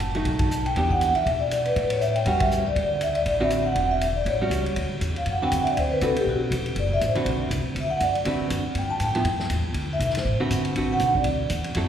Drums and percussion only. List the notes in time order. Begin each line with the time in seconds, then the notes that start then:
0.15 ride
0.25 kick, ride
0.39 kick, ride
0.51 hi-hat pedal
0.66 ride
0.76 kick, ride
0.90 kick
1.01 hi-hat pedal, ride
1.15 ride
1.26 kick, ride
1.51 hi-hat pedal, ride
1.65 ride
1.76 kick, ride
1.90 ride
2.01 hi-hat pedal
2.16 ride
2.26 kick, ride
2.40 kick, ride
2.51 hi-hat pedal
2.76 kick, ride
3.01 hi-hat pedal, ride
3.15 ride
3.26 kick, ride
3.50 hi-hat pedal, ride
3.75 kick, ride
4.01 hi-hat pedal, ride
4.26 kick, ride
4.51 hi-hat pedal, ride
4.66 ride
4.76 kick, ride
5.01 kick, hi-hat pedal, ride
5.16 ride
5.26 kick, ride
5.52 kick, hi-hat pedal, ride
5.67 ride
5.77 kick, ride
6.01 kick, hi-hat pedal, ride
6.16 ride
6.27 kick
6.52 kick, hi-hat pedal, ride
6.66 ride
6.76 kick, ride
7.01 kick, hi-hat pedal, ride
7.15 ride
7.26 kick, ride
7.51 kick, hi-hat pedal, ride
7.76 kick, ride
8.00 kick, hi-hat pedal, ride
8.15 ride
8.25 kick, ride
8.50 kick, hi-hat pedal, ride
8.75 kick, ride
9.00 kick, hi-hat pedal, ride
9.15 ride
9.25 kick, ride
9.40 snare
9.50 kick, hi-hat pedal, ride
9.74 kick, ride
10.00 kick, hi-hat pedal, ride
10.10 snare
10.15 snare, ride
10.25 kick
10.50 kick, hi-hat pedal, ride
10.65 ride
10.76 kick, ride
10.99 kick, hi-hat pedal, ride
11.15 kick
11.24 kick, ride
11.50 kick, hi-hat pedal, ride
11.64 ride
11.74 kick, ride